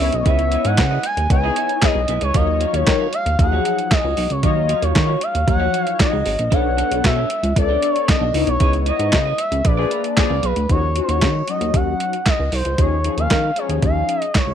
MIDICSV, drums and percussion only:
0, 0, Header, 1, 2, 480
1, 0, Start_track
1, 0, Tempo, 521739
1, 239, Time_signature, 4, 2, 24, 8
1, 13377, End_track
2, 0, Start_track
2, 0, Title_t, "Drums"
2, 115, Note_on_c, 9, 42, 52
2, 207, Note_off_c, 9, 42, 0
2, 237, Note_on_c, 9, 42, 90
2, 238, Note_on_c, 9, 36, 102
2, 329, Note_off_c, 9, 42, 0
2, 330, Note_off_c, 9, 36, 0
2, 357, Note_on_c, 9, 42, 35
2, 449, Note_off_c, 9, 42, 0
2, 475, Note_on_c, 9, 42, 67
2, 567, Note_off_c, 9, 42, 0
2, 595, Note_on_c, 9, 42, 63
2, 687, Note_off_c, 9, 42, 0
2, 712, Note_on_c, 9, 42, 87
2, 718, Note_on_c, 9, 36, 93
2, 718, Note_on_c, 9, 39, 88
2, 720, Note_on_c, 9, 38, 108
2, 804, Note_off_c, 9, 42, 0
2, 810, Note_off_c, 9, 36, 0
2, 810, Note_off_c, 9, 39, 0
2, 812, Note_off_c, 9, 38, 0
2, 952, Note_on_c, 9, 42, 82
2, 1044, Note_off_c, 9, 42, 0
2, 1079, Note_on_c, 9, 42, 59
2, 1171, Note_off_c, 9, 42, 0
2, 1198, Note_on_c, 9, 36, 120
2, 1198, Note_on_c, 9, 42, 96
2, 1290, Note_off_c, 9, 36, 0
2, 1290, Note_off_c, 9, 42, 0
2, 1437, Note_on_c, 9, 42, 76
2, 1529, Note_off_c, 9, 42, 0
2, 1558, Note_on_c, 9, 42, 43
2, 1650, Note_off_c, 9, 42, 0
2, 1676, Note_on_c, 9, 39, 92
2, 1676, Note_on_c, 9, 42, 96
2, 1678, Note_on_c, 9, 36, 120
2, 1678, Note_on_c, 9, 38, 113
2, 1768, Note_off_c, 9, 39, 0
2, 1768, Note_off_c, 9, 42, 0
2, 1770, Note_off_c, 9, 36, 0
2, 1770, Note_off_c, 9, 38, 0
2, 1914, Note_on_c, 9, 42, 78
2, 2006, Note_off_c, 9, 42, 0
2, 2034, Note_on_c, 9, 42, 54
2, 2126, Note_off_c, 9, 42, 0
2, 2156, Note_on_c, 9, 42, 92
2, 2158, Note_on_c, 9, 36, 109
2, 2248, Note_off_c, 9, 42, 0
2, 2250, Note_off_c, 9, 36, 0
2, 2398, Note_on_c, 9, 42, 66
2, 2490, Note_off_c, 9, 42, 0
2, 2520, Note_on_c, 9, 42, 59
2, 2612, Note_off_c, 9, 42, 0
2, 2636, Note_on_c, 9, 42, 94
2, 2640, Note_on_c, 9, 36, 91
2, 2642, Note_on_c, 9, 39, 90
2, 2644, Note_on_c, 9, 38, 108
2, 2728, Note_off_c, 9, 42, 0
2, 2732, Note_off_c, 9, 36, 0
2, 2734, Note_off_c, 9, 39, 0
2, 2736, Note_off_c, 9, 38, 0
2, 2877, Note_on_c, 9, 42, 80
2, 2969, Note_off_c, 9, 42, 0
2, 3001, Note_on_c, 9, 42, 57
2, 3093, Note_off_c, 9, 42, 0
2, 3119, Note_on_c, 9, 36, 121
2, 3120, Note_on_c, 9, 42, 91
2, 3211, Note_off_c, 9, 36, 0
2, 3212, Note_off_c, 9, 42, 0
2, 3360, Note_on_c, 9, 42, 74
2, 3452, Note_off_c, 9, 42, 0
2, 3482, Note_on_c, 9, 42, 46
2, 3574, Note_off_c, 9, 42, 0
2, 3600, Note_on_c, 9, 36, 126
2, 3601, Note_on_c, 9, 39, 90
2, 3601, Note_on_c, 9, 42, 90
2, 3603, Note_on_c, 9, 38, 108
2, 3692, Note_off_c, 9, 36, 0
2, 3693, Note_off_c, 9, 39, 0
2, 3693, Note_off_c, 9, 42, 0
2, 3695, Note_off_c, 9, 38, 0
2, 3837, Note_on_c, 9, 46, 76
2, 3929, Note_off_c, 9, 46, 0
2, 3957, Note_on_c, 9, 42, 53
2, 4049, Note_off_c, 9, 42, 0
2, 4077, Note_on_c, 9, 42, 98
2, 4078, Note_on_c, 9, 36, 106
2, 4169, Note_off_c, 9, 42, 0
2, 4170, Note_off_c, 9, 36, 0
2, 4317, Note_on_c, 9, 42, 69
2, 4409, Note_off_c, 9, 42, 0
2, 4439, Note_on_c, 9, 42, 61
2, 4531, Note_off_c, 9, 42, 0
2, 4555, Note_on_c, 9, 42, 92
2, 4560, Note_on_c, 9, 36, 98
2, 4561, Note_on_c, 9, 39, 86
2, 4563, Note_on_c, 9, 38, 109
2, 4647, Note_off_c, 9, 42, 0
2, 4652, Note_off_c, 9, 36, 0
2, 4653, Note_off_c, 9, 39, 0
2, 4655, Note_off_c, 9, 38, 0
2, 4796, Note_on_c, 9, 42, 82
2, 4888, Note_off_c, 9, 42, 0
2, 4921, Note_on_c, 9, 42, 61
2, 5013, Note_off_c, 9, 42, 0
2, 5038, Note_on_c, 9, 36, 121
2, 5039, Note_on_c, 9, 42, 97
2, 5130, Note_off_c, 9, 36, 0
2, 5131, Note_off_c, 9, 42, 0
2, 5281, Note_on_c, 9, 42, 71
2, 5373, Note_off_c, 9, 42, 0
2, 5398, Note_on_c, 9, 42, 46
2, 5490, Note_off_c, 9, 42, 0
2, 5519, Note_on_c, 9, 36, 126
2, 5519, Note_on_c, 9, 42, 90
2, 5520, Note_on_c, 9, 39, 92
2, 5522, Note_on_c, 9, 38, 113
2, 5611, Note_off_c, 9, 36, 0
2, 5611, Note_off_c, 9, 42, 0
2, 5612, Note_off_c, 9, 39, 0
2, 5614, Note_off_c, 9, 38, 0
2, 5756, Note_on_c, 9, 46, 74
2, 5848, Note_off_c, 9, 46, 0
2, 5878, Note_on_c, 9, 42, 53
2, 5970, Note_off_c, 9, 42, 0
2, 5998, Note_on_c, 9, 36, 110
2, 5998, Note_on_c, 9, 42, 89
2, 6090, Note_off_c, 9, 36, 0
2, 6090, Note_off_c, 9, 42, 0
2, 6240, Note_on_c, 9, 42, 65
2, 6332, Note_off_c, 9, 42, 0
2, 6362, Note_on_c, 9, 42, 62
2, 6454, Note_off_c, 9, 42, 0
2, 6478, Note_on_c, 9, 42, 97
2, 6480, Note_on_c, 9, 36, 101
2, 6483, Note_on_c, 9, 39, 89
2, 6486, Note_on_c, 9, 38, 108
2, 6570, Note_off_c, 9, 42, 0
2, 6572, Note_off_c, 9, 36, 0
2, 6575, Note_off_c, 9, 39, 0
2, 6578, Note_off_c, 9, 38, 0
2, 6716, Note_on_c, 9, 42, 77
2, 6808, Note_off_c, 9, 42, 0
2, 6840, Note_on_c, 9, 42, 61
2, 6932, Note_off_c, 9, 42, 0
2, 6958, Note_on_c, 9, 36, 119
2, 6959, Note_on_c, 9, 42, 101
2, 7050, Note_off_c, 9, 36, 0
2, 7051, Note_off_c, 9, 42, 0
2, 7199, Note_on_c, 9, 42, 77
2, 7291, Note_off_c, 9, 42, 0
2, 7321, Note_on_c, 9, 42, 47
2, 7413, Note_off_c, 9, 42, 0
2, 7439, Note_on_c, 9, 36, 123
2, 7441, Note_on_c, 9, 39, 90
2, 7441, Note_on_c, 9, 42, 94
2, 7444, Note_on_c, 9, 38, 113
2, 7531, Note_off_c, 9, 36, 0
2, 7533, Note_off_c, 9, 39, 0
2, 7533, Note_off_c, 9, 42, 0
2, 7536, Note_off_c, 9, 38, 0
2, 7676, Note_on_c, 9, 46, 76
2, 7768, Note_off_c, 9, 46, 0
2, 7794, Note_on_c, 9, 42, 53
2, 7886, Note_off_c, 9, 42, 0
2, 7913, Note_on_c, 9, 42, 94
2, 7917, Note_on_c, 9, 36, 107
2, 8005, Note_off_c, 9, 42, 0
2, 8009, Note_off_c, 9, 36, 0
2, 8035, Note_on_c, 9, 42, 36
2, 8127, Note_off_c, 9, 42, 0
2, 8153, Note_on_c, 9, 42, 71
2, 8245, Note_off_c, 9, 42, 0
2, 8276, Note_on_c, 9, 42, 62
2, 8368, Note_off_c, 9, 42, 0
2, 8390, Note_on_c, 9, 42, 93
2, 8396, Note_on_c, 9, 39, 87
2, 8398, Note_on_c, 9, 36, 95
2, 8398, Note_on_c, 9, 38, 107
2, 8482, Note_off_c, 9, 42, 0
2, 8488, Note_off_c, 9, 39, 0
2, 8490, Note_off_c, 9, 36, 0
2, 8490, Note_off_c, 9, 38, 0
2, 8633, Note_on_c, 9, 42, 82
2, 8725, Note_off_c, 9, 42, 0
2, 8757, Note_on_c, 9, 42, 62
2, 8849, Note_off_c, 9, 42, 0
2, 8875, Note_on_c, 9, 42, 98
2, 8877, Note_on_c, 9, 36, 125
2, 8967, Note_off_c, 9, 42, 0
2, 8969, Note_off_c, 9, 36, 0
2, 9119, Note_on_c, 9, 42, 73
2, 9211, Note_off_c, 9, 42, 0
2, 9239, Note_on_c, 9, 42, 46
2, 9331, Note_off_c, 9, 42, 0
2, 9358, Note_on_c, 9, 42, 94
2, 9359, Note_on_c, 9, 39, 97
2, 9360, Note_on_c, 9, 36, 116
2, 9361, Note_on_c, 9, 38, 112
2, 9450, Note_off_c, 9, 42, 0
2, 9451, Note_off_c, 9, 39, 0
2, 9452, Note_off_c, 9, 36, 0
2, 9453, Note_off_c, 9, 38, 0
2, 9596, Note_on_c, 9, 42, 71
2, 9688, Note_off_c, 9, 42, 0
2, 9717, Note_on_c, 9, 42, 52
2, 9809, Note_off_c, 9, 42, 0
2, 9839, Note_on_c, 9, 42, 93
2, 9840, Note_on_c, 9, 36, 98
2, 9931, Note_off_c, 9, 42, 0
2, 9932, Note_off_c, 9, 36, 0
2, 10080, Note_on_c, 9, 42, 69
2, 10172, Note_off_c, 9, 42, 0
2, 10201, Note_on_c, 9, 42, 57
2, 10293, Note_off_c, 9, 42, 0
2, 10318, Note_on_c, 9, 42, 89
2, 10322, Note_on_c, 9, 36, 94
2, 10323, Note_on_c, 9, 39, 85
2, 10325, Note_on_c, 9, 38, 110
2, 10410, Note_off_c, 9, 42, 0
2, 10414, Note_off_c, 9, 36, 0
2, 10415, Note_off_c, 9, 39, 0
2, 10417, Note_off_c, 9, 38, 0
2, 10558, Note_on_c, 9, 42, 81
2, 10650, Note_off_c, 9, 42, 0
2, 10682, Note_on_c, 9, 42, 59
2, 10774, Note_off_c, 9, 42, 0
2, 10800, Note_on_c, 9, 42, 95
2, 10801, Note_on_c, 9, 36, 122
2, 10892, Note_off_c, 9, 42, 0
2, 10893, Note_off_c, 9, 36, 0
2, 11042, Note_on_c, 9, 42, 67
2, 11134, Note_off_c, 9, 42, 0
2, 11162, Note_on_c, 9, 42, 44
2, 11254, Note_off_c, 9, 42, 0
2, 11281, Note_on_c, 9, 39, 92
2, 11281, Note_on_c, 9, 42, 85
2, 11282, Note_on_c, 9, 36, 118
2, 11283, Note_on_c, 9, 38, 105
2, 11373, Note_off_c, 9, 39, 0
2, 11373, Note_off_c, 9, 42, 0
2, 11374, Note_off_c, 9, 36, 0
2, 11375, Note_off_c, 9, 38, 0
2, 11519, Note_on_c, 9, 46, 76
2, 11611, Note_off_c, 9, 46, 0
2, 11638, Note_on_c, 9, 42, 52
2, 11730, Note_off_c, 9, 42, 0
2, 11760, Note_on_c, 9, 42, 92
2, 11761, Note_on_c, 9, 36, 101
2, 11852, Note_off_c, 9, 42, 0
2, 11853, Note_off_c, 9, 36, 0
2, 12001, Note_on_c, 9, 42, 68
2, 12093, Note_off_c, 9, 42, 0
2, 12122, Note_on_c, 9, 42, 55
2, 12214, Note_off_c, 9, 42, 0
2, 12237, Note_on_c, 9, 42, 95
2, 12243, Note_on_c, 9, 36, 93
2, 12243, Note_on_c, 9, 39, 83
2, 12245, Note_on_c, 9, 38, 105
2, 12329, Note_off_c, 9, 42, 0
2, 12335, Note_off_c, 9, 36, 0
2, 12335, Note_off_c, 9, 39, 0
2, 12337, Note_off_c, 9, 38, 0
2, 12478, Note_on_c, 9, 42, 73
2, 12570, Note_off_c, 9, 42, 0
2, 12600, Note_on_c, 9, 42, 61
2, 12692, Note_off_c, 9, 42, 0
2, 12719, Note_on_c, 9, 42, 91
2, 12720, Note_on_c, 9, 36, 121
2, 12811, Note_off_c, 9, 42, 0
2, 12812, Note_off_c, 9, 36, 0
2, 12961, Note_on_c, 9, 42, 68
2, 13053, Note_off_c, 9, 42, 0
2, 13081, Note_on_c, 9, 42, 45
2, 13173, Note_off_c, 9, 42, 0
2, 13201, Note_on_c, 9, 39, 87
2, 13201, Note_on_c, 9, 42, 92
2, 13202, Note_on_c, 9, 36, 118
2, 13203, Note_on_c, 9, 38, 110
2, 13293, Note_off_c, 9, 39, 0
2, 13293, Note_off_c, 9, 42, 0
2, 13294, Note_off_c, 9, 36, 0
2, 13295, Note_off_c, 9, 38, 0
2, 13377, End_track
0, 0, End_of_file